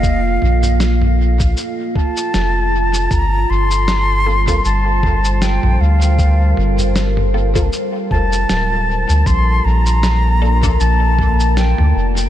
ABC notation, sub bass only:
X:1
M:4/4
L:1/16
Q:"Swing 16ths" 1/4=78
K:Gm
V:1 name="Sub bass" clef=bass
F,,,2 B,,,6 z4 F,,,4 | G,,,2 G,,,6 G,,,4- G,,, B,,, D,,2- | D,,2 G,,,6 z2 F,,,2 D,,,3 D,, | B,,,2 B,,,6 B,,,4- B,,, D,, F,,,2 |]